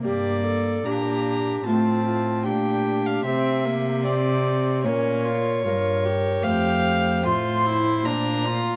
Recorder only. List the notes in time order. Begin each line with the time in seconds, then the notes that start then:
0.05 G4
0.44 A4
0.86 G4
1.66 F4
2.04 F4
2.45 G4
3.26 G4
4.85 A#4 C5
5.65 A#4
6.45 C5